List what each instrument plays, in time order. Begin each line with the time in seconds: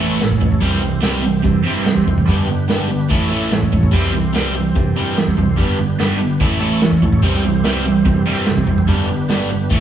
Already playing: picked electric bass A1, tonewheel organ C#4 E4 A4 C#5
0.00 overdriven electric guitar A2 E3 A3
0.20 overdriven electric guitar A2 E3, snare, closed hi-hat
0.31 picked electric bass A1, kick, snare
0.40 picked electric bass C#2, overdriven electric guitar A2 E3, kick
0.52 picked electric bass A1, kick
0.61 picked electric bass C2, overdriven electric guitar C3 E3 G3 C4, tonewheel organ C4 E4 C5, kick, closed hi-hat
0.65 tonewheel organ G4
0.72 snare
0.82 overdriven electric guitar C3 E3 G3
1.00 overdriven electric guitar C3 E3 G3 C4, snare, closed hi-hat
1.05 overdriven electric guitar G3
1.23 overdriven electric guitar C3 E3 G3
1.43 picked electric bass G2, overdriven electric guitar C3 E3 G3, kick, closed hi-hat
1.64 overdriven electric guitar C3 E3 G3 C4
1.85 overdriven electric guitar C3 E3 G3, snare, closed hi-hat
1.96 picked electric bass C3, kick
2.05 picked electric bass C2, overdriven electric guitar C3 E3 G3, kick
2.18 picked electric bass A1, kick
2.28 picked electric bass G1, overdriven electric guitar G2 D3 G3, tonewheel organ B3 D4 G4 B4, kick, closed hi-hat
2.49 overdriven electric guitar G2 D3
2.69 overdriven electric guitar G2 D3 G3, snare, closed hi-hat
2.89 overdriven electric guitar G2 D3
3.10 picked electric bass A1, overdriven electric guitar A2 E3 A3, tonewheel organ C#4 E4 A4 C#5, kick, closed hi-hat
3.31 overdriven electric guitar A2 E3 A3
3.51 overdriven electric guitar A2 E3, snare, closed hi-hat
3.63 picked electric bass A1, kick
3.72 picked electric bass C#2, overdriven electric guitar A2 E3, kick
3.83 picked electric bass A1, kick
3.91 picked electric bass C2, overdriven electric guitar C3 E3 G3 C4, tonewheel organ C4 E4 G4 C5, kick, closed hi-hat
4.12 overdriven electric guitar C3 E3 G3
4.33 overdriven electric guitar C3 E3 G3 C4, snare, closed hi-hat
4.54 overdriven electric guitar C3 E3 G3
4.75 picked electric bass G2, overdriven electric guitar C3 E3 G3, kick, closed hi-hat
4.96 overdriven electric guitar C3 E3 G3 C4
5.17 overdriven electric guitar C3 E3 G3, snare, closed hi-hat
5.28 picked electric bass C3, kick, snare
5.37 picked electric bass C2, overdriven electric guitar C3 E3 G3, kick
5.48 picked electric bass C2
5.56 picked electric bass G1, overdriven electric guitar G2 D3 G3, tonewheel organ B3 D4 G4 B4, kick, closed hi-hat
5.79 overdriven electric guitar G2 D3
6.00 overdriven electric guitar G2 D3 G3, snare, closed hi-hat
6.18 overdriven electric guitar G2 D3
6.40 picked electric bass A1, overdriven electric guitar A2 E3 A3, tonewheel organ C#4 E4 A4 C#5, kick, closed hi-hat
6.60 overdriven electric guitar A2 E3 A3
6.82 overdriven electric guitar A2 E3, snare, closed hi-hat
6.92 picked electric bass A1, kick
7.02 picked electric bass C#2, overdriven electric guitar A2 E3, kick
7.12 picked electric bass A1, kick
7.22 picked electric bass C2, overdriven electric guitar C3 E3 G3 C4, tonewheel organ C4 E4 G4 C5, kick, closed hi-hat
7.34 snare
7.44 overdriven electric guitar C3 E3 G3
7.64 overdriven electric guitar C3 E3 G3 C4, snare, closed hi-hat
7.85 overdriven electric guitar C3 E3 G3
8.05 picked electric bass G2, overdriven electric guitar C3 E3 G3, kick, closed hi-hat
8.26 overdriven electric guitar C3 E3 G3 C4
8.46 overdriven electric guitar C3 E3 G3, snare, closed hi-hat
8.57 picked electric bass C3, kick, snare
8.67 picked electric bass C2, overdriven electric guitar C3 E3 G3, kick
8.78 picked electric bass C2, kick
8.87 picked electric bass G1, overdriven electric guitar G2 D3 G3, tonewheel organ B3 D4 G4 B4, kick, closed hi-hat
8.98 snare
9.08 overdriven electric guitar G2 D3
9.29 overdriven electric guitar G2 D3 G3, snare, closed hi-hat
9.50 overdriven electric guitar G2 D3
9.69 picked electric bass A1, overdriven electric guitar A2 E3 A3, tonewheel organ C#4 E4 A4 C#5, kick, closed hi-hat